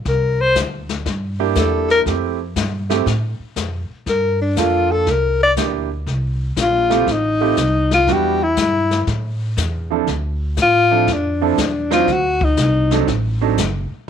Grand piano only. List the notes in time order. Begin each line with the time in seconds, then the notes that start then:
1.39 A#3 D4 E4 G4
2.07 A3 C4 E4 G4
2.90 A3 C4 E4 G4
4.56 A#3 D4 F4 A4
5.57 A#3 D4 E4 G4
6.90 A3 C4 E4 F4 G4
7.41 A3 C4 E4 F4 G4
8.08 G3 B3 D4 E4 F#4
9.90 F3 C4 D4 E4 A4
10.91 F3 C4 D4 E4 A4
11.41 F3 C4 D4 E4 A4
11.91 F#3 C4 D4 D#4 C5
12.91 F#3 C4 D4 D#4 A4
13.41 F#3 C4 D4 D#4 A4